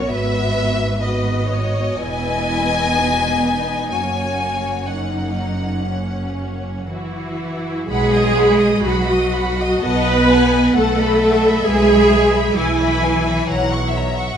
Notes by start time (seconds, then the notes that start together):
Already playing: C#4 F#4 A#4 C#5
0.10 G#1 G#2 B3 F#4 B4 E5
1.01 B3 F#4 B4 D#5
1.48 C#5
1.96 E1 E2 B3 E4 B4 D#5 G#5
2.93 D#4
3.90 F#1 F#2 A#3 C#4 F#4 C#5 G#5
4.90 A#3 C#4 D#4 F#5
5.91 C#4
6.89 E3 E4 F#4
7.88 B1 G#3 G#4 F#5 B5
8.13 D#5 D#6
8.36 F#5 B5
8.58 D#5 D#6
8.81 B1 F#3 F#4 F#5 B5
9.07 D#5 D#6
9.33 F#5 B5
9.60 D#5 D#6
9.82 B1 B3 B4 D#5 F#5 A5
10.07 D#5 B5
10.30 F#5 G#5 A5
10.53 D#5 B5
10.73 B1 A3 A4 F#5 A5
10.98 D#5 B5
11.20 E5 F#5 A5
11.44 D#5 B5
11.65 B1 G#3 G#4 B4 G#5
11.88 E5 B5
12.12 B4 G#5
12.34 E5 B5
12.56 B1 E3 E4 B4 G#5
12.81 E5 B5
13.03 B4 G#5
13.26 E5 B5
13.47 B1 C#5 F#5 A#5
13.70 F#5 C#6
13.91 C#5 E5 A#5
14.15 F#5 C#6